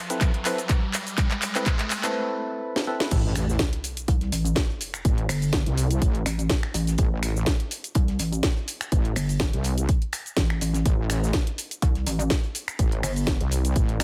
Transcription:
Already playing: riser
0.10 synth stab C4 E4 A4 B4, closed hi-hat, shaker
0.21 kick, clap, closed hi-hat, shaker
0.34 closed hi-hat
0.45 synth stab C4 E4 A4 B4, clap, open hi-hat, shaker
0.58 closed hi-hat, shaker
0.69 kick, clap, closed hi-hat, shaker
0.94 clap, open hi-hat, shaker
1.07 closed hi-hat, shaker
1.18 kick, clap, closed hi-hat, shaker
1.31 clap, closed hi-hat
1.42 clap, open hi-hat, shaker
1.55 synth stab C4 E4 A4 B4, clap, closed hi-hat, shaker
1.66 kick, clap, closed hi-hat, shaker
1.79 clap, closed hi-hat
1.90 clap, open hi-hat, shaker
2.04 synth stab C4 E4 A4 B4, clap, closed hi-hat, shaker
2.76 snare
2.87 synth stab C4 E4 A4 B4
3.00 snare
3.11 wobble bass A1, kick, closed hi-hat, crash, sub drop, shaker
3.35 finger snap, closed hi-hat, open hi-hat, shaker
3.49 shaker
3.59 kick, snare, closed hi-hat, shaker
3.73 closed hi-hat
3.84 closed hi-hat, open hi-hat, shaker
3.97 closed hi-hat, shaker
4.08 wobble bass C2, kick, closed hi-hat, shaker
4.21 snare, closed hi-hat
4.32 wobble bass A1, snare, closed hi-hat, open hi-hat, shaker
4.45 closed hi-hat, shaker
4.55 kick, snare, closed hi-hat, shaker
4.70 closed hi-hat
4.81 closed hi-hat, open hi-hat, shaker
4.94 finger snap, closed hi-hat, shaker
5.05 wobble bass A1, kick, closed hi-hat, shaker
5.18 closed hi-hat
5.29 wobble bass G1, finger snap, open hi-hat, shaker
5.42 closed hi-hat, shaker
5.53 kick, snare, closed hi-hat, shaker
5.66 wobble bass C2, closed hi-hat
5.77 closed hi-hat, open hi-hat, shaker
5.91 closed hi-hat, shaker
6.02 wobble bass A1, kick, closed hi-hat, shaker
6.15 closed hi-hat
6.26 wobble bass A1, finger snap, snare, closed hi-hat, open hi-hat, shaker
6.39 closed hi-hat, shaker
6.50 kick, snare, closed hi-hat, shaker
6.63 finger snap
6.74 wobble bass A1, closed hi-hat, open hi-hat, shaker
6.87 snare, closed hi-hat, shaker
6.98 wobble bass A1, kick, closed hi-hat, shaker
7.23 finger snap, closed hi-hat, open hi-hat, shaker
7.37 shaker
7.46 kick, snare, closed hi-hat, shaker
7.60 closed hi-hat
7.71 closed hi-hat, open hi-hat, shaker
7.84 closed hi-hat, shaker
7.95 wobble bass C2, kick, closed hi-hat, shaker
8.08 snare, closed hi-hat
8.19 wobble bass A1, snare, closed hi-hat, open hi-hat, shaker
8.33 closed hi-hat, shaker
8.43 kick, snare, closed hi-hat, shaker
8.57 closed hi-hat
8.68 closed hi-hat, open hi-hat, shaker
8.81 finger snap, closed hi-hat, shaker
8.92 wobble bass A1, kick, closed hi-hat, shaker
9.05 closed hi-hat
9.16 wobble bass G1, finger snap, open hi-hat, shaker
9.29 closed hi-hat, shaker
9.40 kick, snare, closed hi-hat, shaker
9.53 wobble bass C2, closed hi-hat
9.64 closed hi-hat, open hi-hat, shaker
9.78 closed hi-hat, shaker
9.89 kick, closed hi-hat, shaker
10.02 closed hi-hat
10.13 finger snap, snare, closed hi-hat, open hi-hat, shaker
10.26 closed hi-hat, shaker
10.37 wobble bass A1, kick, snare, closed hi-hat, shaker
10.50 finger snap
10.61 wobble bass A1, closed hi-hat, open hi-hat, shaker
10.74 snare, closed hi-hat, shaker
10.86 wobble bass A1, kick, closed hi-hat, shaker
11.10 finger snap, closed hi-hat, open hi-hat, shaker
11.24 shaker
11.33 kick, snare, closed hi-hat, shaker
11.47 closed hi-hat
11.58 closed hi-hat, open hi-hat, shaker
11.71 closed hi-hat, shaker
11.82 wobble bass C2, kick, closed hi-hat, shaker
11.95 snare, closed hi-hat
12.07 wobble bass A1, snare, closed hi-hat, open hi-hat, shaker
12.20 closed hi-hat, shaker
12.30 kick, snare, closed hi-hat, shaker
12.43 closed hi-hat
12.55 closed hi-hat, open hi-hat, shaker
12.68 finger snap, closed hi-hat, shaker
12.79 wobble bass A1, kick, closed hi-hat, shaker
12.92 closed hi-hat
13.03 wobble bass G1, finger snap, open hi-hat, shaker
13.16 closed hi-hat, shaker
13.26 kick, snare, closed hi-hat, shaker
13.41 wobble bass C2, closed hi-hat
13.51 closed hi-hat, open hi-hat, shaker
13.65 closed hi-hat, shaker
13.76 wobble bass A1, kick, closed hi-hat, shaker
13.89 closed hi-hat
14.00 wobble bass A1, finger snap, snare, closed hi-hat, open hi-hat

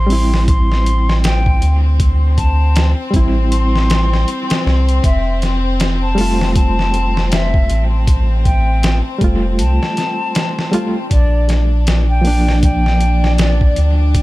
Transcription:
Already playing: sub bass A1, violin section C4, flute C6
0.07 reed electric piano G3 C4, open hi-hat
0.12 reed electric piano E4
0.34 snare
0.48 flute C6, kick, closed hi-hat
0.72 snare
0.86 closed hi-hat
1.09 snare
1.24 flute G5, snare, closed hi-hat
1.46 kick
1.62 sub bass D2, closed hi-hat
2.00 kick, closed hi-hat
2.38 flute A5, kick, closed hi-hat
2.76 snare, closed hi-hat
3.11 sub bass A1, reed electric piano G3 C4, kick, closed hi-hat
3.16 reed electric piano E4
3.51 flute C6, closed hi-hat
3.76 snare
3.90 snare, closed hi-hat
4.13 snare
4.28 closed hi-hat
4.50 snare, closed hi-hat
4.66 sub bass C2, snare
4.89 closed hi-hat
5.04 sub bass F1, flute E5, kick, closed hi-hat
5.42 snare, closed hi-hat
5.80 snare, closed hi-hat
6.02 flute A5
6.15 reed electric piano G3 A3, open hi-hat
6.21 reed electric piano F4
6.41 snare
6.56 flute A5, kick, closed hi-hat
6.79 snare
6.94 closed hi-hat
7.17 snare
7.31 flute E5, snare, closed hi-hat
7.54 kick
7.70 sub bass A1, closed hi-hat
8.07 kick, closed hi-hat
8.45 flute G5, kick, closed hi-hat
8.83 snare, closed hi-hat
9.18 sub bass F1, reed electric piano G3 A3, kick, closed hi-hat
9.24 reed electric piano F4
9.59 sub bass C2, flute A5, closed hi-hat
9.83 snare
9.97 snare, closed hi-hat
10.35 snare, closed hi-hat
10.59 snare
10.71 reed electric piano G3 A3 F4, closed hi-hat
11.11 sub bass A#1, violin section D4, flute D5, kick, closed hi-hat
11.49 snare, closed hi-hat
11.87 snare, closed hi-hat
12.09 flute G5
12.21 reed electric piano F3 A#3, open hi-hat
12.27 reed electric piano D4
12.48 snare
12.63 flute G5, kick, closed hi-hat
12.86 snare
13.01 closed hi-hat
13.24 snare
13.38 flute D5, snare, closed hi-hat
13.61 kick
13.76 sub bass D2, closed hi-hat
14.15 kick, closed hi-hat

